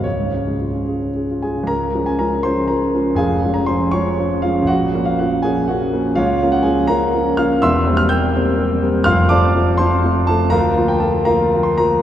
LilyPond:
<<
  \new Staff \with { instrumentName = "Grand piano" } { \time 6/8 \key des \major \tempo 4. = 81 des''2~ des''8 <aes' aes''>8 | <bes' bes''>8. aes''16 <bes' bes''>8 <c'' c'''>8 <bes' bes''>4 | <aes' f'' aes''>8. bes''16 <c'' c'''>8 <des'' aes'' des'''>4 <f' f''>8 | <ges' ges''>8. f''16 <ges' ges''>8 <aes' aes''>8 <ges' ges''>4 |
<f' des'' f''>8. ges''16 <aes' aes''>8 <bes' f'' bes''>4 <f'' f'''>8 | \key f \major <e'' c''' e'''>8. f'''16 <g'' e''' g'''>2 | <f'' c''' f'''>8 <d'' a'' d'''>4 <c'' a'' c'''>4 <a' a''>8 | <bes' f'' bes''>8. g''16 <a' a''>8 <bes' f'' bes''>8. c'''16 <bes' bes''>8 | }
  \new Staff \with { instrumentName = "Grand piano" } { \time 6/8 \key des \major des,16 aes,16 des16 aes16 f'16 des'16 aes'16 des'16 aes'16 f'16 aes16 des16 | des,8 <f aes des'>8 <f aes des'>8 <f aes des'>8 <f aes des'>8 <f aes des'>8 | <f,, f,>8 <f aes des'>8 <f aes des'>8 <f aes des'>8 <f aes des'>8 <f aes des'>8 | bes,,8 <f bes des'>8 <f bes des'>8 <f bes des'>8 <f bes des'>8 <f bes des'>8 |
des,8 <f bes des'>8 <f bes des'>8 <f bes des'>8 <f bes des'>8 <f bes des'>8 | \key f \major <e,, e,>8 <g bes c'>8 <g bes c'>8 <g bes c'>8 <g bes c'>8 <g bes c'>8 | <f,, f,>8 <f a c'>8 <f a c'>8 <f a c'>8 <f a c'>8 <f a c'>8 | d,8 <f bes f'>8 <f bes f'>8 <f bes f'>8 <f bes f'>8 <f bes f'>8 | }
>>